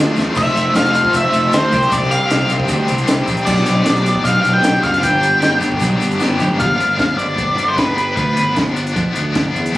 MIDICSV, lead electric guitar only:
0, 0, Header, 1, 2, 480
1, 0, Start_track
1, 0, Tempo, 391645
1, 438, Time_signature, 4, 2, 24, 8
1, 11983, End_track
2, 0, Start_track
2, 0, Title_t, "Lead electric guitar"
2, 0, Program_c, 0, 29
2, 456, Note_on_c, 0, 76, 103
2, 927, Note_off_c, 0, 76, 0
2, 932, Note_on_c, 0, 77, 102
2, 1415, Note_off_c, 0, 77, 0
2, 1422, Note_on_c, 0, 76, 94
2, 1887, Note_on_c, 0, 72, 84
2, 1898, Note_off_c, 0, 76, 0
2, 2360, Note_on_c, 0, 74, 86
2, 2370, Note_off_c, 0, 72, 0
2, 2584, Note_off_c, 0, 74, 0
2, 2584, Note_on_c, 0, 77, 94
2, 3062, Note_off_c, 0, 77, 0
2, 4230, Note_on_c, 0, 74, 89
2, 5203, Note_off_c, 0, 74, 0
2, 5208, Note_on_c, 0, 77, 88
2, 5558, Note_on_c, 0, 79, 110
2, 5580, Note_off_c, 0, 77, 0
2, 5898, Note_off_c, 0, 79, 0
2, 5926, Note_on_c, 0, 77, 106
2, 6170, Note_on_c, 0, 79, 92
2, 6175, Note_off_c, 0, 77, 0
2, 6840, Note_off_c, 0, 79, 0
2, 8084, Note_on_c, 0, 77, 103
2, 8795, Note_off_c, 0, 77, 0
2, 8799, Note_on_c, 0, 74, 89
2, 9416, Note_on_c, 0, 72, 78
2, 9429, Note_off_c, 0, 74, 0
2, 9528, Note_off_c, 0, 72, 0
2, 9533, Note_on_c, 0, 71, 88
2, 9760, Note_off_c, 0, 71, 0
2, 9775, Note_on_c, 0, 71, 78
2, 9988, Note_off_c, 0, 71, 0
2, 10003, Note_on_c, 0, 71, 70
2, 10462, Note_off_c, 0, 71, 0
2, 11983, End_track
0, 0, End_of_file